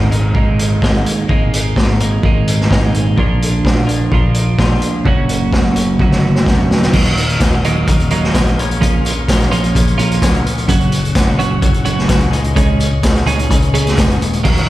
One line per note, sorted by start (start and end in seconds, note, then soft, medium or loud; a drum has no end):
0.00 0.30 G#1 medium
0.00 0.13 G#2 medium
0.00 0.32 D#3 medium
0.00 0.12 G#3 medium
0.00 0.11 A#3 medium
0.00 0.11 D#4 medium
0.11 0.81 G#2 medium
0.11 0.81 D#3 medium
0.11 0.83 G#3 medium
0.11 0.84 A#3 medium
0.11 0.80 D#4 medium
0.11 closed hi-hat medium
0.34 0.77 G#1 medium
0.34 1.27 G#2 medium
0.34 1.27 D#3 medium
0.34 1.29 G#3 medium
0.34 1.30 A#3 medium
0.34 1.28 D#4 medium
0.34 kick loud
0.59 closed hi-hat medium
0.82 1.03 G#1 medium
0.82 1.27 G#2 medium
0.82 1.28 D#3 medium
0.82 1.29 G#3 medium
0.82 1.29 A#3 medium
0.82 1.28 D#4 medium
0.82 kick loud
0.82 snare loud
1.06 closed hi-hat medium
1.28 1.72 G#1 loud
1.28 1.98 G#2 medium
1.28 1.98 D#3 medium
1.28 2.01 G#3 medium
1.28 2.00 A#3 medium
1.28 1.99 D#4 medium
1.28 kick loud
1.53 closed hi-hat medium
1.76 2.19 G#1 medium
1.76 kick loud
1.76 snare loud
2.00 2.68 G#2 medium
2.00 2.69 D#3 medium
2.00 2.69 G#3 medium
2.00 2.71 A#3 medium
2.00 2.69 D#4 medium
2.00 closed hi-hat medium
2.23 2.66 G#1 medium
2.23 3.16 G#2 medium
2.23 3.16 D#3 medium
2.23 3.16 G#3 medium
2.23 3.19 A#3 medium
2.23 3.17 D#4 medium
2.23 kick loud
2.47 closed hi-hat medium
2.61 snare soft
2.69 3.13 G#1 medium
2.69 3.15 G#2 medium
2.69 3.15 D#3 medium
2.69 3.16 G#3 medium
2.69 3.17 A#3 medium
2.69 3.16 D#4 medium
2.69 kick loud
2.69 snare loud
2.94 closed hi-hat medium
3.16 3.60 A#1 loud
3.16 3.86 A#2 medium
3.16 3.88 F3 loud
3.16 3.87 A#3 medium
3.16 3.85 D4 loud
3.16 3.86 F4 loud
3.16 kick loud
3.42 closed hi-hat medium
3.64 4.07 A#1 medium
3.64 kick loud
3.64 snare loud
3.86 4.57 A#2 medium
3.86 4.58 F3 medium
3.86 4.59 A#3 medium
3.86 4.56 D4 medium
3.86 4.60 F4 medium
3.86 closed hi-hat medium
4.11 4.54 A#1 medium
4.11 5.04 A#2 medium
4.11 5.06 F3 medium
4.11 5.06 A#3 medium
4.11 5.05 D4 medium
4.11 5.07 F4 medium
4.11 kick loud
4.34 closed hi-hat medium
4.58 4.79 A#1 medium
4.58 5.04 A#2 medium
4.58 5.06 F3 medium
4.58 5.06 A#3 medium
4.58 5.05 D4 medium
4.58 5.07 F4 medium
4.58 kick loud
4.58 snare loud
4.82 closed hi-hat medium
5.05 5.48 F#1 loud
5.05 5.74 F#2 medium
5.05 5.75 C#3 medium
5.05 5.75 F#3 loud
5.05 5.75 A#3 medium
5.05 5.75 C#4 loud
5.05 5.74 F#4 loud
5.05 kick loud
5.29 closed hi-hat medium
5.52 5.95 F#1 medium
5.52 kick loud
5.52 snare loud
5.76 6.45 F#2 medium
5.76 6.45 C#3 medium
5.76 6.46 F#3 medium
5.76 6.45 A#3 medium
5.76 6.45 C#4 medium
5.76 6.45 F#4 medium
5.76 closed hi-hat medium
5.99 6.42 F#1 loud
5.99 6.92 F#2 medium
5.99 6.92 C#3 medium
5.99 6.92 F#3 medium
5.99 6.93 A#3 medium
5.99 6.93 C#4 medium
5.99 6.93 F#4 medium
5.99 kick loud
5.99 high tom medium
6.11 snare medium
6.35 snare medium
6.46 6.67 F1 medium
6.46 6.92 F#2 medium
6.46 6.92 C#3 medium
6.46 6.92 F#3 medium
6.46 6.92 A#3 medium
6.46 6.93 C#4 medium
6.46 6.93 F#4 medium
6.46 kick loud
6.46 snare medium
6.69 6.91 D#1 medium
6.69 snare loud
6.82 snare medium
6.93 7.36 D#1 loud
6.93 7.41 D#2 medium
6.93 7.41 A#2 medium
6.93 7.17 D#3 loud
6.93 7.16 F#3 loud
6.93 7.17 A#3 loud
6.93 7.15 D#4 loud
6.93 8.57 F#4 medium
6.93 10.66 F5 medium
6.93 8.57 D#6 medium
6.93 kick loud
6.93 crash loud
6.93 tambourine medium
7.05 closed hi-hat soft
7.16 7.39 D#3 medium
7.16 7.40 F#3 medium
7.16 7.42 A#3 medium
7.16 7.41 D#4 medium
7.16 closed hi-hat medium
7.16 tambourine medium
7.29 closed hi-hat soft
7.40 7.83 D#1 loud
7.40 7.65 D#3 medium
7.40 7.64 F#3 medium
7.40 7.64 A#3 medium
7.40 7.63 D#4 medium
7.40 kick loud
7.40 snare loud
7.40 closed hi-hat medium
7.40 tambourine medium
7.64 7.87 D#3 medium
7.64 7.87 F#3 medium
7.64 7.88 A#3 medium
7.64 7.88 D#4 medium
7.64 closed hi-hat medium
7.64 tambourine medium
7.87 8.31 D#1 loud
7.87 8.34 D#2 medium
7.87 8.35 A#2 medium
7.87 8.12 D#3 loud
7.87 8.12 F#3 loud
7.87 8.11 A#3 loud
7.87 8.10 D#4 medium
7.87 kick loud
7.87 closed hi-hat medium
8.00 closed hi-hat soft
8.10 8.33 D#3 medium
8.10 8.34 F#3 medium
8.10 8.35 A#3 medium
8.10 8.36 D#4 medium
8.10 closed hi-hat medium
8.10 tambourine soft
8.24 snare soft
8.34 8.55 A#1 medium
8.34 8.57 D#3 medium
8.34 8.57 F#3 medium
8.34 8.57 A#3 medium
8.34 8.57 D#4 medium
8.34 kick loud
8.34 snare loud
8.34 closed hi-hat loud
8.34 tambourine medium
8.47 closed hi-hat soft
8.57 9.24 A#1 loud
8.57 8.81 A#2 medium
8.57 8.81 F3 medium
8.57 8.82 A#3 medium
8.57 8.83 C#4 medium
8.57 8.82 F4 loud
8.57 10.68 A#4 medium
8.57 14.42 C#6 medium
8.57 closed hi-hat medium
8.57 tambourine medium
8.71 closed hi-hat soft
8.82 9.29 A#2 loud
8.82 9.28 F3 loud
8.82 9.06 A#3 loud
8.82 9.06 C#4 medium
8.82 9.04 F4 loud
8.82 kick loud
8.82 closed hi-hat medium
8.82 tambourine medium
9.05 9.28 A#3 medium
9.05 9.30 C#4 medium
9.05 9.30 F4 medium
9.05 closed hi-hat medium
9.05 tambourine medium
9.28 9.71 A#1 medium
9.28 9.74 F3 medium
9.28 9.53 A#3 medium
9.28 9.53 C#4 medium
9.28 9.51 F4 medium
9.28 kick loud
9.28 snare loud
9.28 closed hi-hat loud
9.28 tambourine medium
9.40 snare soft
9.40 closed hi-hat soft
9.52 9.83 F3 medium
9.52 9.75 A#3 medium
9.52 9.76 C#4 medium
9.52 9.75 F4 medium
9.52 closed hi-hat medium
9.52 tambourine medium
9.64 closed hi-hat soft
9.74 10.18 A#1 medium
9.74 10.22 A#2 loud
9.74 10.21 F3 loud
9.74 10.01 A#3 loud
9.74 10.00 C#4 loud
9.74 9.98 F4 loud
9.74 kick loud
9.74 closed hi-hat loud
9.87 closed hi-hat soft
9.99 10.30 F3 medium
9.99 10.22 A#3 medium
9.99 10.23 C#4 medium
9.99 10.23 F4 medium
9.99 closed hi-hat medium
9.99 tambourine soft
10.11 closed hi-hat soft
10.22 10.43 C#2 loud
10.22 10.68 F3 medium
10.22 10.68 A#3 medium
10.22 10.69 C#4 medium
10.22 10.69 F4 medium
10.22 kick loud
10.22 snare loud
10.22 closed hi-hat loud
10.22 tambourine medium
10.34 closed hi-hat soft
10.46 closed hi-hat medium
10.46 tambourine medium
10.58 closed hi-hat soft
10.68 11.11 F#1 loud
10.68 11.15 F#2 medium
10.68 11.13 C#3 medium
10.68 10.93 F#3 loud
10.68 10.92 C#4 loud
10.68 10.90 F#4 loud
10.68 12.31 G#4 medium
10.68 12.31 F#5 medium
10.68 kick loud
10.68 closed hi-hat loud
10.68 tambourine medium
10.80 closed hi-hat soft
10.92 11.14 F#3 medium
10.92 11.16 C#4 medium
10.92 11.15 F#4 medium
10.92 closed hi-hat medium
10.92 tambourine medium
11.05 closed hi-hat soft
11.14 11.58 F#1 medium
11.14 11.60 C#3 medium
11.14 11.38 F#3 medium
11.14 11.38 C#4 medium
11.14 11.36 F#4 medium
11.14 kick loud
11.14 snare loud
11.14 closed hi-hat loud
11.14 tambourine loud
11.37 11.70 C#3 medium
11.37 11.60 F#3 medium
11.37 11.61 C#4 medium
11.37 11.61 F#4 medium
11.37 closed hi-hat medium
11.37 tambourine medium
11.60 12.06 F#1 medium
11.60 12.09 F#2 medium
11.60 12.06 C#3 loud
11.60 11.85 F#3 loud
11.60 11.84 C#4 loud
11.60 11.83 F#4 loud
11.60 kick loud
11.60 closed hi-hat medium
11.74 closed hi-hat soft
11.84 12.17 C#3 medium
11.84 12.06 F#3 medium
11.84 12.08 C#4 medium
11.84 12.08 F#4 medium
11.84 closed hi-hat medium
11.84 tambourine soft
11.98 snare soft
12.07 12.30 C#2 medium
12.07 12.31 C#3 medium
12.07 12.31 F#3 medium
12.07 12.31 C#4 medium
12.07 12.31 F#4 medium
12.07 kick loud
12.07 snare loud
12.07 closed hi-hat loud
12.07 tambourine medium
12.20 closed hi-hat soft
12.31 12.99 C#2 loud
12.31 12.53 C#3 medium
12.31 12.53 G#3 medium
12.31 12.54 C#4 medium
12.31 12.55 D#4 medium
12.31 14.41 F4 medium
12.31 12.55 G#4 medium
12.31 14.41 D#5 medium
12.31 closed hi-hat medium
12.31 tambourine medium
12.44 closed hi-hat soft
12.54 13.02 C#3 loud
12.54 13.01 G#3 medium
12.54 12.79 C#4 loud
12.54 12.78 D#4 loud
12.54 12.77 G#4 loud
12.54 kick loud
12.54 closed hi-hat loud
12.54 tambourine medium
12.78 13.02 C#4 medium
12.78 13.04 D#4 medium
12.78 13.03 G#4 medium
12.78 closed hi-hat medium
12.78 tambourine medium
13.02 13.46 C#2 medium
13.02 13.49 G#3 medium
13.02 13.27 C#4 medium
13.02 13.27 D#4 medium
13.02 13.25 G#4 medium
13.02 kick loud
13.02 snare loud
13.02 closed hi-hat loud
13.02 tambourine medium
13.15 snare soft
13.15 closed hi-hat soft
13.27 13.58 G#3 medium
13.27 13.50 C#4 medium
13.27 13.50 D#4 medium
13.27 13.50 G#4 medium
13.27 closed hi-hat medium
13.27 tambourine medium
13.39 closed hi-hat soft
13.50 13.93 C#2 loud
13.50 13.97 C#3 medium
13.50 13.96 G#3 medium
13.50 13.74 C#4 loud
13.50 13.74 D#4 loud
13.50 13.72 G#4 loud
13.50 kick loud
13.50 closed hi-hat loud
13.50 tambourine soft
13.62 closed hi-hat soft
13.74 14.05 G#3 medium
13.74 13.97 C#4 medium
13.74 13.98 D#4 medium
13.74 13.98 G#4 medium
13.74 closed hi-hat medium
13.87 snare soft
13.87 closed hi-hat soft
13.97 14.19 F1 medium
13.97 14.43 G#3 medium
13.97 14.44 C#4 medium
13.97 14.44 D#4 medium
13.97 14.44 G#4 medium
13.97 kick loud
13.97 snare loud
13.97 closed hi-hat loud
13.97 tambourine medium
14.11 closed hi-hat soft
14.20 14.41 D#1 medium
14.20 closed hi-hat medium
14.20 tambourine medium
14.33 closed hi-hat medium
14.44 14.69 D#1 loud
14.44 14.69 D#2 medium
14.44 14.69 A#2 medium
14.44 14.69 D#3 loud
14.44 14.68 F#3 medium
14.44 14.68 A#3 medium
14.44 14.67 D#4 loud
14.44 14.69 F#4 medium
14.44 14.69 F5 medium
14.44 14.69 D#6 medium
14.44 kick loud
14.44 crash loud
14.44 tambourine medium
14.57 closed hi-hat soft